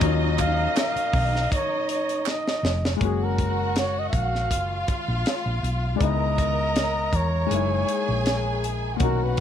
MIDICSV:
0, 0, Header, 1, 7, 480
1, 0, Start_track
1, 0, Tempo, 749064
1, 12, Time_signature, 4, 2, 24, 8
1, 6025, End_track
2, 0, Start_track
2, 0, Title_t, "Flugelhorn"
2, 0, Program_c, 0, 56
2, 254, Note_on_c, 0, 77, 100
2, 476, Note_off_c, 0, 77, 0
2, 503, Note_on_c, 0, 77, 107
2, 951, Note_off_c, 0, 77, 0
2, 983, Note_on_c, 0, 73, 90
2, 1201, Note_off_c, 0, 73, 0
2, 1225, Note_on_c, 0, 73, 83
2, 1466, Note_on_c, 0, 75, 80
2, 1475, Note_off_c, 0, 73, 0
2, 1828, Note_off_c, 0, 75, 0
2, 1950, Note_on_c, 0, 68, 75
2, 2079, Note_on_c, 0, 70, 77
2, 2088, Note_off_c, 0, 68, 0
2, 2427, Note_on_c, 0, 73, 87
2, 2437, Note_off_c, 0, 70, 0
2, 2556, Note_on_c, 0, 75, 85
2, 2566, Note_off_c, 0, 73, 0
2, 2616, Note_off_c, 0, 75, 0
2, 2619, Note_on_c, 0, 76, 68
2, 2660, Note_on_c, 0, 77, 95
2, 2669, Note_off_c, 0, 76, 0
2, 3135, Note_off_c, 0, 77, 0
2, 3822, Note_on_c, 0, 74, 78
2, 3865, Note_on_c, 0, 75, 110
2, 3874, Note_off_c, 0, 74, 0
2, 4586, Note_on_c, 0, 73, 96
2, 4595, Note_off_c, 0, 75, 0
2, 5538, Note_off_c, 0, 73, 0
2, 5779, Note_on_c, 0, 70, 76
2, 5917, Note_on_c, 0, 71, 81
2, 5926, Note_off_c, 0, 70, 0
2, 6025, Note_off_c, 0, 71, 0
2, 6025, End_track
3, 0, Start_track
3, 0, Title_t, "Violin section"
3, 0, Program_c, 1, 48
3, 0, Note_on_c, 1, 63, 91
3, 0, Note_on_c, 1, 75, 100
3, 1662, Note_off_c, 1, 75, 0
3, 1665, Note_off_c, 1, 63, 0
3, 1919, Note_on_c, 1, 78, 79
3, 1921, Note_on_c, 1, 66, 67
3, 2865, Note_off_c, 1, 78, 0
3, 2867, Note_off_c, 1, 66, 0
3, 2882, Note_on_c, 1, 65, 76
3, 2887, Note_on_c, 1, 77, 80
3, 3827, Note_off_c, 1, 65, 0
3, 3830, Note_off_c, 1, 77, 0
3, 3848, Note_on_c, 1, 70, 72
3, 3849, Note_on_c, 1, 82, 81
3, 4790, Note_off_c, 1, 70, 0
3, 4791, Note_off_c, 1, 82, 0
3, 4805, Note_on_c, 1, 68, 72
3, 4805, Note_on_c, 1, 80, 85
3, 5748, Note_off_c, 1, 68, 0
3, 5748, Note_off_c, 1, 80, 0
3, 5773, Note_on_c, 1, 66, 70
3, 5773, Note_on_c, 1, 78, 82
3, 6025, Note_off_c, 1, 66, 0
3, 6025, Note_off_c, 1, 78, 0
3, 6025, End_track
4, 0, Start_track
4, 0, Title_t, "Grand piano"
4, 0, Program_c, 2, 0
4, 0, Control_c, 2, 64, 127
4, 0, Note_on_c, 2, 54, 79
4, 2, Note_on_c, 2, 58, 69
4, 16, Note_on_c, 2, 61, 69
4, 33, Note_on_c, 2, 65, 82
4, 1892, Note_off_c, 2, 54, 0
4, 1900, Note_off_c, 2, 58, 0
4, 1900, Note_on_c, 2, 56, 57
4, 1908, Note_off_c, 2, 61, 0
4, 1916, Note_off_c, 2, 65, 0
4, 1916, Note_on_c, 2, 58, 53
4, 1933, Note_on_c, 2, 61, 52
4, 1940, Control_c, 2, 64, 0
4, 1948, Note_on_c, 2, 66, 67
4, 2046, Control_c, 2, 64, 127
4, 3808, Note_off_c, 2, 56, 0
4, 3817, Note_on_c, 2, 56, 60
4, 3818, Note_off_c, 2, 58, 0
4, 3826, Note_off_c, 2, 61, 0
4, 3833, Note_on_c, 2, 59, 54
4, 3834, Note_off_c, 2, 66, 0
4, 3848, Note_on_c, 2, 63, 57
4, 3859, Control_c, 2, 64, 0
4, 3867, Note_on_c, 2, 64, 64
4, 3953, Control_c, 2, 64, 127
4, 4774, Note_off_c, 2, 56, 0
4, 4782, Note_off_c, 2, 59, 0
4, 4784, Note_on_c, 2, 56, 61
4, 4790, Note_off_c, 2, 63, 0
4, 4800, Note_off_c, 2, 64, 0
4, 4800, Note_on_c, 2, 58, 57
4, 4814, Note_on_c, 2, 63, 56
4, 4819, Control_c, 2, 64, 0
4, 4833, Note_on_c, 2, 64, 66
4, 4934, Control_c, 2, 64, 127
4, 5737, Note_off_c, 2, 56, 0
4, 5745, Note_on_c, 2, 46, 60
4, 5746, Note_off_c, 2, 58, 0
4, 5753, Note_off_c, 2, 63, 0
4, 5762, Note_on_c, 2, 61, 54
4, 5763, Note_off_c, 2, 64, 0
4, 5777, Note_on_c, 2, 63, 54
4, 5779, Control_c, 2, 64, 0
4, 5795, Note_on_c, 2, 66, 67
4, 5901, Control_c, 2, 64, 127
4, 6025, Note_off_c, 2, 46, 0
4, 6025, Note_off_c, 2, 61, 0
4, 6025, Note_off_c, 2, 63, 0
4, 6025, Note_off_c, 2, 66, 0
4, 6025, End_track
5, 0, Start_track
5, 0, Title_t, "Fingered electric bass"
5, 0, Program_c, 3, 33
5, 8, Note_on_c, 3, 39, 105
5, 421, Note_off_c, 3, 39, 0
5, 726, Note_on_c, 3, 35, 89
5, 934, Note_off_c, 3, 35, 0
5, 1686, Note_on_c, 3, 29, 89
5, 1894, Note_off_c, 3, 29, 0
5, 1928, Note_on_c, 3, 30, 86
5, 2624, Note_off_c, 3, 30, 0
5, 2648, Note_on_c, 3, 34, 84
5, 2890, Note_off_c, 3, 34, 0
5, 2890, Note_on_c, 3, 30, 81
5, 3096, Note_off_c, 3, 30, 0
5, 3257, Note_on_c, 3, 34, 73
5, 3353, Note_off_c, 3, 34, 0
5, 3497, Note_on_c, 3, 34, 77
5, 3593, Note_off_c, 3, 34, 0
5, 3607, Note_on_c, 3, 35, 97
5, 3814, Note_off_c, 3, 35, 0
5, 3849, Note_on_c, 3, 37, 89
5, 4544, Note_off_c, 3, 37, 0
5, 4568, Note_on_c, 3, 40, 81
5, 4775, Note_off_c, 3, 40, 0
5, 4809, Note_on_c, 3, 30, 101
5, 5016, Note_off_c, 3, 30, 0
5, 5181, Note_on_c, 3, 34, 79
5, 5745, Note_off_c, 3, 34, 0
5, 5768, Note_on_c, 3, 35, 96
5, 6025, Note_off_c, 3, 35, 0
5, 6025, End_track
6, 0, Start_track
6, 0, Title_t, "Muted fingered electric bass strokes"
6, 613, Note_on_c, 9, 29, 48
6, 677, Note_off_c, 9, 29, 0
6, 6025, End_track
7, 0, Start_track
7, 0, Title_t, "Drums"
7, 7, Note_on_c, 9, 42, 86
7, 10, Note_on_c, 9, 36, 116
7, 71, Note_off_c, 9, 42, 0
7, 74, Note_off_c, 9, 36, 0
7, 246, Note_on_c, 9, 42, 80
7, 249, Note_on_c, 9, 39, 73
7, 250, Note_on_c, 9, 36, 91
7, 310, Note_off_c, 9, 42, 0
7, 314, Note_off_c, 9, 36, 0
7, 314, Note_off_c, 9, 39, 0
7, 489, Note_on_c, 9, 42, 94
7, 490, Note_on_c, 9, 39, 74
7, 495, Note_on_c, 9, 38, 119
7, 554, Note_off_c, 9, 42, 0
7, 555, Note_off_c, 9, 39, 0
7, 559, Note_off_c, 9, 38, 0
7, 619, Note_on_c, 9, 42, 54
7, 683, Note_off_c, 9, 42, 0
7, 727, Note_on_c, 9, 36, 91
7, 731, Note_on_c, 9, 46, 53
7, 791, Note_off_c, 9, 36, 0
7, 795, Note_off_c, 9, 46, 0
7, 869, Note_on_c, 9, 38, 34
7, 933, Note_off_c, 9, 38, 0
7, 972, Note_on_c, 9, 36, 82
7, 977, Note_on_c, 9, 42, 105
7, 1036, Note_off_c, 9, 36, 0
7, 1041, Note_off_c, 9, 42, 0
7, 1210, Note_on_c, 9, 42, 73
7, 1274, Note_off_c, 9, 42, 0
7, 1341, Note_on_c, 9, 42, 47
7, 1405, Note_off_c, 9, 42, 0
7, 1448, Note_on_c, 9, 39, 88
7, 1457, Note_on_c, 9, 38, 56
7, 1512, Note_off_c, 9, 39, 0
7, 1521, Note_off_c, 9, 38, 0
7, 1586, Note_on_c, 9, 38, 66
7, 1650, Note_off_c, 9, 38, 0
7, 1696, Note_on_c, 9, 38, 93
7, 1761, Note_off_c, 9, 38, 0
7, 1828, Note_on_c, 9, 38, 97
7, 1892, Note_off_c, 9, 38, 0
7, 1928, Note_on_c, 9, 36, 104
7, 1931, Note_on_c, 9, 42, 75
7, 1992, Note_off_c, 9, 36, 0
7, 1995, Note_off_c, 9, 42, 0
7, 2169, Note_on_c, 9, 36, 83
7, 2170, Note_on_c, 9, 42, 73
7, 2233, Note_off_c, 9, 36, 0
7, 2234, Note_off_c, 9, 42, 0
7, 2408, Note_on_c, 9, 42, 84
7, 2413, Note_on_c, 9, 38, 98
7, 2472, Note_off_c, 9, 42, 0
7, 2477, Note_off_c, 9, 38, 0
7, 2646, Note_on_c, 9, 36, 80
7, 2651, Note_on_c, 9, 42, 66
7, 2710, Note_off_c, 9, 36, 0
7, 2715, Note_off_c, 9, 42, 0
7, 2788, Note_on_c, 9, 38, 31
7, 2852, Note_off_c, 9, 38, 0
7, 2889, Note_on_c, 9, 36, 73
7, 2892, Note_on_c, 9, 42, 100
7, 2953, Note_off_c, 9, 36, 0
7, 2956, Note_off_c, 9, 42, 0
7, 3127, Note_on_c, 9, 42, 66
7, 3129, Note_on_c, 9, 36, 83
7, 3191, Note_off_c, 9, 42, 0
7, 3193, Note_off_c, 9, 36, 0
7, 3370, Note_on_c, 9, 42, 84
7, 3377, Note_on_c, 9, 38, 100
7, 3434, Note_off_c, 9, 42, 0
7, 3441, Note_off_c, 9, 38, 0
7, 3616, Note_on_c, 9, 42, 69
7, 3680, Note_off_c, 9, 42, 0
7, 3848, Note_on_c, 9, 36, 104
7, 3849, Note_on_c, 9, 42, 77
7, 3912, Note_off_c, 9, 36, 0
7, 3913, Note_off_c, 9, 42, 0
7, 4090, Note_on_c, 9, 36, 85
7, 4091, Note_on_c, 9, 42, 73
7, 4154, Note_off_c, 9, 36, 0
7, 4155, Note_off_c, 9, 42, 0
7, 4330, Note_on_c, 9, 42, 91
7, 4335, Note_on_c, 9, 38, 109
7, 4394, Note_off_c, 9, 42, 0
7, 4399, Note_off_c, 9, 38, 0
7, 4567, Note_on_c, 9, 36, 78
7, 4570, Note_on_c, 9, 42, 69
7, 4631, Note_off_c, 9, 36, 0
7, 4634, Note_off_c, 9, 42, 0
7, 4812, Note_on_c, 9, 42, 99
7, 4876, Note_off_c, 9, 42, 0
7, 5052, Note_on_c, 9, 42, 64
7, 5116, Note_off_c, 9, 42, 0
7, 5291, Note_on_c, 9, 42, 91
7, 5298, Note_on_c, 9, 38, 101
7, 5355, Note_off_c, 9, 42, 0
7, 5363, Note_off_c, 9, 38, 0
7, 5536, Note_on_c, 9, 42, 65
7, 5600, Note_off_c, 9, 42, 0
7, 5766, Note_on_c, 9, 42, 79
7, 5769, Note_on_c, 9, 36, 114
7, 5830, Note_off_c, 9, 42, 0
7, 5833, Note_off_c, 9, 36, 0
7, 6025, End_track
0, 0, End_of_file